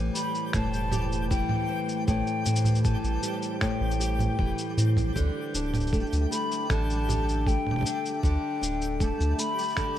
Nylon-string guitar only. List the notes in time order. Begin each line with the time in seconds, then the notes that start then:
Already playing: A2 E3 G3 C4 G4
0.15 G3
0.54 A2
0.92 G4
1.30 E3
1.69 C4
2.08 A2
2.46 C4
2.84 E3
3.23 G3
3.61 A2
4.00 G4
4.39 E3
4.77 C4
5.16 D3
5.55 D4
5.93 A3
6.31 A3
6.70 D3
7.09 G4
7.47 A3
7.85 D4
8.23 D3
8.61 D4
9.00 A3
9.39 A3
9.77 D3